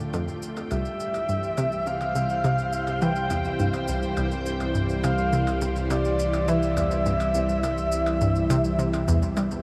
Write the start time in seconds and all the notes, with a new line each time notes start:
Already playing: D2 A3 F4 D5 G5
0.14 F2, percussion blips, shaker
0.28 shaker
0.42 shaker
0.57 percussion blips, shaker
0.71 C2 G3 E5, percussion blips, shaker
0.85 shaker
1.00 E3, shaker
1.14 C5, percussion blips, shaker
1.29 G2, shaker
1.43 shaker
1.57 C3, percussion blips, shaker
1.72 shaker
1.87 C3 F5, shaker
2.01 percussion blips, shaker
2.15 C3, shaker
2.30 shaker
2.44 C3, percussion blips, shaker
2.58 shaker
2.73 shaker
2.87 percussion blips, shaker
3.02 E3 G5, shaker
3.16 shaker
3.30 E2, percussion blips, shaker
3.45 shaker
3.59 G2, shaker
3.74 percussion blips, shaker
3.88 C2, shaker
4.03 shaker
4.17 C2, percussion blips, shaker
4.31 shaker
4.46 shaker
4.60 percussion blips, shaker
4.75 G2, shaker
4.89 shaker
5.03 C3 F5, percussion blips, shaker
5.18 shaker
5.33 C3, shaker
5.47 percussion blips, shaker
5.61 C3, shaker
5.76 shaker
5.90 C3 D5, percussion blips, shaker
6.05 shaker
6.19 shaker
6.33 percussion blips, shaker
6.48 E3 E5, shaker
6.62 shaker
6.77 E2, percussion blips, shaker
6.91 shaker
7.06 G2, shaker
7.20 percussion blips, shaker
7.34 C2, shaker
7.49 shaker
7.63 C2, percussion blips, shaker
7.78 shaker
7.92 shaker
8.06 percussion blips, shaker
8.21 G2, shaker
8.35 shaker
8.50 C3, percussion blips, shaker
8.64 shaker
8.79 C3, shaker
8.93 percussion blips, shaker
9.08 E2, shaker
9.22 shaker
9.37 G3, percussion blips, shaker
9.51 shaker